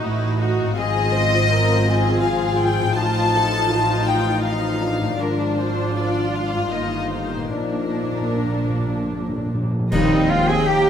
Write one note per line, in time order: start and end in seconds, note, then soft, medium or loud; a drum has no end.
0.00 0.68 A1 medium
0.00 0.71 A2 medium
0.00 0.68 A2 medium
0.00 0.73 B3 soft
0.00 0.39 D#4 medium
0.00 0.40 E4 medium
0.00 0.39 F#4 medium
0.00 0.75 F#4 medium
0.00 0.40 B4 medium
0.00 0.77 D#5 medium
0.39 0.76 D#4 medium
0.39 0.76 F#4 medium
0.59 2.91 G#2 medium
0.64 2.81 C4 medium
0.68 2.86 F4 medium
0.73 2.93 G#1 medium
0.73 2.93 G#2 medium
0.73 5.15 F3 medium
0.73 2.93 C4 medium
0.73 2.93 F4 medium
0.73 5.15 F4 medium
0.73 1.13 G#4 medium
0.73 2.18 D#5 loud
0.73 4.63 F5 medium
1.13 1.50 C5 medium
1.50 1.86 A#4 medium
1.85 2.96 G#4 medium
2.22 2.59 F5 medium
2.59 2.96 G5 loud
2.78 5.13 A2 medium
2.82 5.15 C4 medium
2.87 5.08 F4 soft
2.91 5.20 D#5 medium
2.91 4.08 A5 loud
2.96 5.15 A1 medium
2.96 5.15 A2 medium
2.96 5.15 D#4 medium
2.96 3.33 F4 medium
3.34 3.72 A4 medium
3.71 4.45 F4 medium
4.08 4.45 G5 medium
4.44 4.82 D#4 medium
4.44 5.17 F5 medium
4.80 5.95 D4 medium
5.01 6.66 G#2 medium
5.05 6.57 A#3 soft
5.10 6.70 F4 soft
5.14 6.55 F3 medium
5.14 6.73 D5 medium
5.19 6.69 G#1 medium
5.19 6.69 G#2 medium
5.19 6.55 D4 medium
5.19 6.68 D4 medium
5.19 6.68 F4 medium
5.19 5.57 A#4 medium
5.58 5.95 C5 medium
5.93 7.51 F4 medium
5.93 6.34 D5 medium
6.33 6.72 F5 medium
6.54 7.46 G2 medium
6.59 7.37 A#3 soft
6.63 7.51 D#4 soft
6.68 7.48 D#4 medium
6.68 7.53 D#5 soft
6.72 7.50 G1 medium
6.72 7.50 G2 medium
6.72 7.50 D#3 medium
6.72 9.67 A#3 medium
6.72 8.31 D#4 medium
6.72 7.12 D#5 medium
7.11 7.51 C5 medium
7.34 9.86 A#2 soft
7.39 10.16 A#3 soft
7.43 9.91 F4 soft
7.48 9.70 A#1 medium
7.48 9.70 A#2 medium
7.48 9.93 D5 soft
7.52 7.59 A#2 soft
7.52 9.58 F3 medium
7.52 9.66 D4 medium
7.52 9.49 D4 medium
7.52 9.53 A#4 medium
7.60 7.67 A#2 soft
7.68 7.75 A#2 soft
7.77 7.84 A#2 soft
7.94 8.02 A#2 soft
8.03 8.11 A#2 soft
8.12 8.19 A#2 soft
8.21 8.27 A#2 soft
8.28 8.36 A#2 soft
8.34 8.44 A#2 soft
8.34 9.57 D4 medium
8.45 8.53 A#2 soft
8.54 8.61 A#2 medium
8.63 8.68 A#2 soft
8.70 8.77 A#2 medium
8.78 8.86 A#2 medium
8.87 8.94 A#2 medium
8.95 9.03 A#2 medium
9.04 9.11 A#2 medium
9.12 9.19 A#2 medium
9.20 9.28 A#2 medium
9.29 9.36 A#2 medium
9.37 9.45 A#2 medium
9.46 9.53 A#2 medium
9.54 9.62 A#2 medium
9.63 9.70 A#2 medium
9.71 9.79 A#2 medium
9.80 9.87 A#2 medium
9.91 10.90 D#2 medium
9.91 10.90 D#3 medium
9.91 10.19 G3 medium
9.91 10.33 G3 medium
9.91 10.19 A#3 medium
9.91 10.62 C4 medium
9.91 10.31 D#4 medium
9.91 10.27 D#4 medium
9.91 10.26 D#5 medium
9.91 10.62 D#5 medium
9.91 10.90 G5 medium
9.91 concert bass drum medium
9.91 crash medium
10.17 10.90 A#3 medium
10.29 10.50 G#3 medium
10.29 10.49 F4 medium
10.29 10.48 F4 medium
10.29 10.48 F5 medium
10.41 10.90 A#4 medium
10.47 10.68 C4 medium
10.47 10.68 G#4 medium
10.47 10.67 G#4 medium
10.47 10.66 G#5 medium
10.65 10.90 A#3 medium
10.65 10.90 G4 medium
10.65 10.90 G5 medium
10.65 10.90 A#5 medium